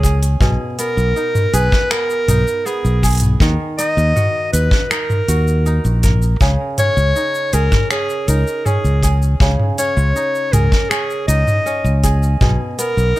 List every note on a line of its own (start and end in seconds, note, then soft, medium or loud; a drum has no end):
0.00 0.34 C#2 medium
0.00 1.40 C#4 medium
0.00 0.91 D#4 medium
0.00 0.22 G#4 medium
0.00 0.41 G#4 medium
0.00 kick medium
0.04 shaker medium
0.23 open hi-hat medium
0.23 shaker soft
0.41 0.55 B1 loud
0.41 2.75 B2 medium
0.41 1.53 G#4 medium
0.41 kick loud
0.41 mid tom medium
0.41 shaker soft
0.78 1.91 B3 medium
0.78 1.55 A#4 loud
0.78 open hi-hat medium
0.78 shaker medium
0.97 1.12 B1 medium
0.97 shaker soft
1.16 2.28 D#4 medium
1.16 shaker soft
1.35 mid tom medium
1.35 shaker soft
1.53 1.68 B1 medium
1.53 3.02 G#4 medium
1.53 1.92 B4 loud
1.53 open hi-hat medium
1.53 shaker medium
1.72 kick loud
1.72 shaker soft
1.91 2.66 B3 medium
1.91 2.68 A#4 loud
1.91 finger snap medium
1.91 shaker soft
2.10 shaker soft
2.28 2.43 B1 medium
2.28 3.78 D#4 medium
2.28 mid tom medium
2.28 open hi-hat medium
2.28 shaker medium
2.47 shaker soft
2.66 4.52 B3 medium
2.66 3.22 G#4 medium
2.66 shaker soft
2.85 3.34 B1 medium
2.85 shaker soft
3.03 4.40 G#4 medium
3.03 kick medium
3.03 open hi-hat soft
3.03 shaker medium
3.06 open hi-hat soft
3.08 open hi-hat medium
3.11 open hi-hat medium
3.13 open hi-hat medium
3.15 open hi-hat medium
3.17 open hi-hat medium
3.20 mid tom medium
3.20 open hi-hat medium
3.20 shaker soft
3.40 3.55 D#2 loud
3.40 6.47 D#3 medium
3.40 4.69 A#4 medium
3.40 kick loud
3.40 shaker soft
3.78 4.90 D#4 medium
3.78 4.49 D#5 loud
3.78 open hi-hat medium
3.78 shaker medium
3.97 4.12 D#2 medium
3.97 shaker soft
4.16 5.28 F#4 medium
4.16 mid tom medium
4.16 shaker soft
4.53 4.68 D#2 medium
4.53 4.91 B4 loud
4.53 open hi-hat medium
4.53 shaker medium
4.71 kick loud
4.71 shaker soft
4.90 5.66 D#4 medium
4.90 6.03 A#4 medium
4.90 finger snap medium
4.90 shaker soft
5.10 mid tom medium
5.10 shaker soft
5.28 5.78 D#2 medium
5.28 6.75 F#4 medium
5.28 open hi-hat medium
5.28 shaker medium
5.48 shaker soft
5.66 7.15 D#4 medium
5.66 shaker soft
5.85 6.34 A#1 medium
5.85 shaker soft
6.03 7.31 A#4 medium
6.03 kick medium
6.03 mid tom medium
6.03 open hi-hat medium
6.03 shaker medium
6.22 shaker soft
6.41 6.56 C#2 medium
6.41 8.75 C#3 medium
6.41 7.53 G#4 medium
6.41 kick loud
6.41 shaker soft
6.78 7.90 C#4 medium
6.78 7.55 C#5 loud
6.78 mid tom medium
6.78 open hi-hat medium
6.78 shaker medium
6.97 7.12 C#2 medium
6.97 shaker soft
7.16 8.28 D#4 medium
7.16 shaker soft
7.35 shaker soft
7.53 7.68 C#2 medium
7.53 9.02 G#4 medium
7.53 7.90 A#4 loud
7.53 open hi-hat medium
7.53 shaker medium
7.72 kick loud
7.72 mid tom medium
7.72 shaker soft
7.91 8.65 C#4 medium
7.91 8.30 G#4 loud
7.91 finger snap medium
7.91 shaker soft
8.10 shaker soft
8.28 8.43 C#2 loud
8.28 10.15 D#4 medium
8.28 8.67 A#4 medium
8.28 open hi-hat medium
8.28 shaker medium
8.47 shaker soft
8.66 9.78 C#4 medium
8.66 9.22 G#4 medium
8.66 mid tom medium
8.66 shaker soft
8.84 9.34 C#2 medium
8.84 shaker soft
9.03 9.41 G#4 medium
9.03 kick medium
9.03 open hi-hat medium
9.03 shaker medium
9.22 shaker soft
9.40 9.55 C#2 loud
9.40 11.75 C#3 medium
9.40 10.53 G#4 medium
9.40 kick loud
9.40 shaker soft
9.59 mid tom medium
9.78 10.90 C#4 medium
9.78 10.54 C#5 loud
9.78 open hi-hat medium
9.78 shaker medium
9.97 10.12 C#2 loud
9.97 shaker soft
10.16 11.28 D#4 medium
10.16 shaker soft
10.35 shaker soft
10.53 10.68 C#2 medium
10.53 12.02 G#4 medium
10.53 10.91 A#4 loud
10.53 mid tom medium
10.53 open hi-hat medium
10.53 shaker medium
10.72 kick medium
10.72 shaker soft
10.90 11.66 C#4 medium
10.90 11.27 G#4 medium
10.90 finger snap medium
10.90 shaker soft
11.10 shaker soft
11.28 11.43 C#2 loud
11.28 12.90 D#4 medium
11.28 11.99 D#5 loud
11.28 open hi-hat medium
11.28 shaker medium
11.47 mid tom medium
11.47 shaker soft
11.66 13.20 C#4 medium
11.66 shaker soft
11.84 12.34 C#2 medium
11.84 shaker soft
12.03 12.41 G#4 medium
12.03 kick medium
12.03 open hi-hat medium
12.03 shaker medium
12.23 shaker soft
12.41 12.56 B1 loud
12.41 13.20 B2 medium
12.41 13.20 G#4 medium
12.41 kick loud
12.41 mid tom medium
12.41 shaker soft
12.79 13.20 B3 medium
12.79 13.20 A#4 loud
12.79 open hi-hat medium
12.79 shaker medium
12.97 13.12 B1 medium
12.97 shaker soft
13.16 13.20 D#4 medium
13.16 shaker soft